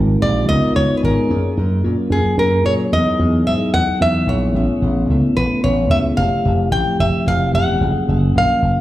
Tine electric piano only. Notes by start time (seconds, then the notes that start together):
Already playing: G#3 C4 D#4 F4 A#4
0.20 G#3 C4 D#4 F4 G4
0.47 G#3 B3 D#4 F4 A#4
0.74 G#3 B3 D#4 F4 B4 D#5
1.01 G#3 B3 D#4 F4 G#4 G#5
1.29 F#3 A#3 C#4 F4 G#4
1.57 F#3 A#3 C#4 F4 A#4
1.84 F#3 A#3 C#4 F4 A#4
2.38 F#3 A#3 C#4 F4 G#4
2.65 F#3 A#3 C#4 F4 G#4
2.92 F#3 B3 D#4 E4
3.18 F#3 B3 D#4 E4 G#4
3.46 F#3 B3 D#4 E4 G#4
4.00 F#3 B3 D#4 E4 B4
4.27 F#3 B3 D#4 E4 G#4
4.54 A3 B3 C#4 E4 G#4
4.81 A3 B3 C#4 E4 G#4
5.08 A3 B3 C#4 E4 A4
5.63 A3 B3 C#4 E4 B4
5.88 A3 B3 C#4 E4 G#4
6.17 F3 A3 C4 E4 G4
6.44 F3 A3 C4 E4 G4
6.71 F3 A3 C4 E4 G4
7.25 F3 A3 C4 E4 G4
7.52 F3 A3 C4 E4 G4
7.79 F#3 A#3 C#4 F4 G#4
8.07 F#3 A#3 C#4 F4 G#4
8.34 F#3 A#3 C#4 F4 A#4